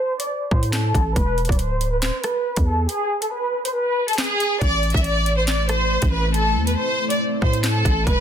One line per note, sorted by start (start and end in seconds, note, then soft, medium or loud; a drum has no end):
0.00 0.18 C5 medium
0.20 0.28 D5 medium
0.20 closed hi-hat medium
0.51 0.93 A2 loud
0.51 0.70 C5 medium
0.51 kick loud
0.63 closed hi-hat medium
0.73 1.14 A4 medium
0.73 snare loud
0.73 clap medium
0.73 closed hi-hat medium
0.95 1.15 A1 loud
0.95 kick medium
0.95 closed hi-hat medium
1.16 1.48 E1 loud
1.16 1.47 B4 loud
1.16 kick loud
1.16 closed hi-hat medium
1.38 closed hi-hat soft
1.45 closed hi-hat medium
1.49 2.11 D1 loud
1.49 1.58 D5 medium
1.49 kick loud
1.49 closed hi-hat medium
1.59 1.90 C5 medium
1.59 closed hi-hat medium
1.81 closed hi-hat medium
1.92 2.01 B4 medium
2.02 2.21 C5 medium
2.02 snare loud
2.02 clap medium
2.02 closed hi-hat medium
2.24 2.65 B4 medium
2.24 cross-stick loud
2.24 closed hi-hat medium
2.56 2.88 E2 loud
2.56 kick loud
2.56 closed hi-hat medium
2.67 2.86 A4 medium
2.89 3.20 G#4 loud
2.89 closed hi-hat medium
3.22 3.31 A4 medium
3.22 closed hi-hat medium
3.32 3.63 B4 loud
3.65 3.74 C5 medium
3.65 closed hi-hat medium
3.75 4.06 B4 medium
4.08 4.17 A4 medium
4.08 closed hi-hat medium
4.13 closed hi-hat medium
4.18 4.59 G#4 loud
4.18 snare loud
4.18 clap medium
4.18 closed hi-hat medium
4.24 closed hi-hat medium
4.40 closed hi-hat medium
4.61 4.93 A1 loud
4.61 8.03 A3 medium
4.61 8.03 C4 medium
4.61 8.20 E4 medium
4.61 4.92 D5 loud
4.61 kick loud
4.61 closed hi-hat medium
4.83 closed hi-hat soft
4.90 closed hi-hat medium
4.94 5.98 A1 loud
4.94 5.03 E5 medium
4.94 kick loud
4.94 closed hi-hat medium
5.04 5.36 D5 medium
5.04 closed hi-hat medium
5.26 closed hi-hat medium
5.38 5.46 C5 medium
5.47 5.67 D5 medium
5.47 snare loud
5.47 clap medium
5.47 closed hi-hat medium
5.69 6.10 C5 medium
5.69 cross-stick loud
5.69 closed hi-hat medium
6.02 6.57 A1 loud
6.02 kick loud
6.02 closed hi-hat medium
6.12 6.31 B4 medium
6.34 6.65 A4 loud
6.34 closed hi-hat medium
6.56 6.76 E2 loud
6.67 6.76 B4 medium
6.67 closed hi-hat medium
6.77 7.08 C5 medium
7.10 7.19 D5 medium
7.10 closed hi-hat medium
7.42 7.83 A2 loud
7.42 7.61 C5 medium
7.42 kick loud
7.53 closed hi-hat medium
7.64 8.04 A4 medium
7.64 snare loud
7.64 clap medium
7.64 closed hi-hat medium
7.85 8.06 A1 loud
7.85 kick medium
7.85 closed hi-hat medium
8.07 8.20 E1 loud
8.07 8.20 E3 medium
8.07 8.20 G#4 medium
8.07 8.20 B4 loud
8.07 kick loud
8.07 closed hi-hat medium